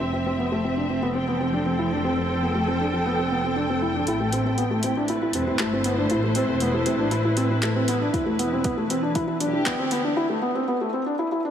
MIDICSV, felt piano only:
0, 0, Header, 1, 2, 480
1, 0, Start_track
1, 0, Tempo, 508475
1, 5, Time_signature, 4, 2, 24, 8
1, 10861, End_track
2, 0, Start_track
2, 0, Title_t, "Felt piano"
2, 0, Program_c, 0, 0
2, 7, Note_on_c, 0, 60, 77
2, 78, Note_off_c, 0, 60, 0
2, 125, Note_on_c, 0, 60, 66
2, 197, Note_off_c, 0, 60, 0
2, 249, Note_on_c, 0, 60, 73
2, 320, Note_off_c, 0, 60, 0
2, 370, Note_on_c, 0, 59, 63
2, 440, Note_off_c, 0, 59, 0
2, 491, Note_on_c, 0, 57, 75
2, 561, Note_off_c, 0, 57, 0
2, 609, Note_on_c, 0, 60, 64
2, 679, Note_off_c, 0, 60, 0
2, 730, Note_on_c, 0, 62, 66
2, 800, Note_off_c, 0, 62, 0
2, 850, Note_on_c, 0, 60, 64
2, 920, Note_off_c, 0, 60, 0
2, 967, Note_on_c, 0, 59, 72
2, 1038, Note_off_c, 0, 59, 0
2, 1083, Note_on_c, 0, 60, 64
2, 1156, Note_off_c, 0, 60, 0
2, 1207, Note_on_c, 0, 59, 68
2, 1278, Note_off_c, 0, 59, 0
2, 1325, Note_on_c, 0, 60, 60
2, 1397, Note_off_c, 0, 60, 0
2, 1449, Note_on_c, 0, 62, 72
2, 1520, Note_off_c, 0, 62, 0
2, 1570, Note_on_c, 0, 60, 67
2, 1641, Note_off_c, 0, 60, 0
2, 1690, Note_on_c, 0, 64, 69
2, 1761, Note_off_c, 0, 64, 0
2, 1813, Note_on_c, 0, 62, 70
2, 1883, Note_off_c, 0, 62, 0
2, 1933, Note_on_c, 0, 60, 75
2, 2003, Note_off_c, 0, 60, 0
2, 2053, Note_on_c, 0, 60, 67
2, 2123, Note_off_c, 0, 60, 0
2, 2170, Note_on_c, 0, 60, 69
2, 2240, Note_off_c, 0, 60, 0
2, 2292, Note_on_c, 0, 59, 60
2, 2362, Note_off_c, 0, 59, 0
2, 2410, Note_on_c, 0, 57, 73
2, 2480, Note_off_c, 0, 57, 0
2, 2529, Note_on_c, 0, 60, 65
2, 2600, Note_off_c, 0, 60, 0
2, 2653, Note_on_c, 0, 62, 69
2, 2723, Note_off_c, 0, 62, 0
2, 2769, Note_on_c, 0, 60, 66
2, 2839, Note_off_c, 0, 60, 0
2, 2890, Note_on_c, 0, 59, 73
2, 2960, Note_off_c, 0, 59, 0
2, 3013, Note_on_c, 0, 60, 68
2, 3083, Note_off_c, 0, 60, 0
2, 3132, Note_on_c, 0, 59, 70
2, 3201, Note_off_c, 0, 59, 0
2, 3248, Note_on_c, 0, 60, 60
2, 3319, Note_off_c, 0, 60, 0
2, 3361, Note_on_c, 0, 62, 77
2, 3434, Note_off_c, 0, 62, 0
2, 3491, Note_on_c, 0, 60, 66
2, 3561, Note_off_c, 0, 60, 0
2, 3607, Note_on_c, 0, 64, 65
2, 3678, Note_off_c, 0, 64, 0
2, 3729, Note_on_c, 0, 62, 67
2, 3800, Note_off_c, 0, 62, 0
2, 3852, Note_on_c, 0, 64, 78
2, 3922, Note_off_c, 0, 64, 0
2, 3968, Note_on_c, 0, 57, 62
2, 4039, Note_off_c, 0, 57, 0
2, 4087, Note_on_c, 0, 60, 70
2, 4159, Note_off_c, 0, 60, 0
2, 4208, Note_on_c, 0, 60, 67
2, 4279, Note_off_c, 0, 60, 0
2, 4321, Note_on_c, 0, 59, 71
2, 4394, Note_off_c, 0, 59, 0
2, 4445, Note_on_c, 0, 57, 68
2, 4517, Note_off_c, 0, 57, 0
2, 4568, Note_on_c, 0, 60, 69
2, 4639, Note_off_c, 0, 60, 0
2, 4692, Note_on_c, 0, 62, 70
2, 4762, Note_off_c, 0, 62, 0
2, 4811, Note_on_c, 0, 64, 72
2, 4881, Note_off_c, 0, 64, 0
2, 4932, Note_on_c, 0, 64, 65
2, 5002, Note_off_c, 0, 64, 0
2, 5049, Note_on_c, 0, 60, 69
2, 5120, Note_off_c, 0, 60, 0
2, 5167, Note_on_c, 0, 60, 64
2, 5238, Note_off_c, 0, 60, 0
2, 5287, Note_on_c, 0, 57, 74
2, 5358, Note_off_c, 0, 57, 0
2, 5408, Note_on_c, 0, 60, 68
2, 5479, Note_off_c, 0, 60, 0
2, 5528, Note_on_c, 0, 59, 71
2, 5599, Note_off_c, 0, 59, 0
2, 5646, Note_on_c, 0, 62, 72
2, 5718, Note_off_c, 0, 62, 0
2, 5768, Note_on_c, 0, 64, 83
2, 5839, Note_off_c, 0, 64, 0
2, 5888, Note_on_c, 0, 57, 71
2, 5959, Note_off_c, 0, 57, 0
2, 6004, Note_on_c, 0, 60, 76
2, 6076, Note_off_c, 0, 60, 0
2, 6124, Note_on_c, 0, 60, 66
2, 6196, Note_off_c, 0, 60, 0
2, 6247, Note_on_c, 0, 59, 78
2, 6318, Note_off_c, 0, 59, 0
2, 6363, Note_on_c, 0, 57, 69
2, 6436, Note_off_c, 0, 57, 0
2, 6481, Note_on_c, 0, 60, 72
2, 6554, Note_off_c, 0, 60, 0
2, 6601, Note_on_c, 0, 62, 72
2, 6674, Note_off_c, 0, 62, 0
2, 6717, Note_on_c, 0, 64, 72
2, 6791, Note_off_c, 0, 64, 0
2, 6844, Note_on_c, 0, 64, 69
2, 6916, Note_off_c, 0, 64, 0
2, 6960, Note_on_c, 0, 60, 77
2, 7034, Note_off_c, 0, 60, 0
2, 7085, Note_on_c, 0, 60, 66
2, 7157, Note_off_c, 0, 60, 0
2, 7202, Note_on_c, 0, 57, 80
2, 7275, Note_off_c, 0, 57, 0
2, 7327, Note_on_c, 0, 60, 68
2, 7398, Note_off_c, 0, 60, 0
2, 7444, Note_on_c, 0, 59, 73
2, 7516, Note_off_c, 0, 59, 0
2, 7565, Note_on_c, 0, 62, 78
2, 7637, Note_off_c, 0, 62, 0
2, 7682, Note_on_c, 0, 64, 92
2, 7755, Note_off_c, 0, 64, 0
2, 7799, Note_on_c, 0, 57, 74
2, 7872, Note_off_c, 0, 57, 0
2, 7922, Note_on_c, 0, 59, 78
2, 7995, Note_off_c, 0, 59, 0
2, 8047, Note_on_c, 0, 60, 75
2, 8118, Note_off_c, 0, 60, 0
2, 8160, Note_on_c, 0, 59, 86
2, 8234, Note_off_c, 0, 59, 0
2, 8283, Note_on_c, 0, 57, 72
2, 8356, Note_off_c, 0, 57, 0
2, 8406, Note_on_c, 0, 60, 72
2, 8478, Note_off_c, 0, 60, 0
2, 8520, Note_on_c, 0, 62, 72
2, 8594, Note_off_c, 0, 62, 0
2, 8642, Note_on_c, 0, 64, 82
2, 8715, Note_off_c, 0, 64, 0
2, 8755, Note_on_c, 0, 64, 74
2, 8830, Note_off_c, 0, 64, 0
2, 8876, Note_on_c, 0, 62, 79
2, 8951, Note_off_c, 0, 62, 0
2, 8998, Note_on_c, 0, 62, 73
2, 9072, Note_off_c, 0, 62, 0
2, 9118, Note_on_c, 0, 59, 81
2, 9192, Note_off_c, 0, 59, 0
2, 9240, Note_on_c, 0, 60, 75
2, 9313, Note_off_c, 0, 60, 0
2, 9363, Note_on_c, 0, 59, 80
2, 9436, Note_off_c, 0, 59, 0
2, 9480, Note_on_c, 0, 62, 78
2, 9553, Note_off_c, 0, 62, 0
2, 9598, Note_on_c, 0, 64, 97
2, 9672, Note_off_c, 0, 64, 0
2, 9719, Note_on_c, 0, 57, 81
2, 9793, Note_off_c, 0, 57, 0
2, 9838, Note_on_c, 0, 59, 79
2, 9912, Note_off_c, 0, 59, 0
2, 9959, Note_on_c, 0, 60, 76
2, 10032, Note_off_c, 0, 60, 0
2, 10084, Note_on_c, 0, 59, 90
2, 10156, Note_off_c, 0, 59, 0
2, 10207, Note_on_c, 0, 57, 79
2, 10278, Note_off_c, 0, 57, 0
2, 10323, Note_on_c, 0, 60, 78
2, 10395, Note_off_c, 0, 60, 0
2, 10443, Note_on_c, 0, 62, 80
2, 10515, Note_off_c, 0, 62, 0
2, 10562, Note_on_c, 0, 64, 87
2, 10635, Note_off_c, 0, 64, 0
2, 10685, Note_on_c, 0, 64, 80
2, 10757, Note_off_c, 0, 64, 0
2, 10807, Note_on_c, 0, 62, 77
2, 10861, Note_off_c, 0, 62, 0
2, 10861, End_track
0, 0, End_of_file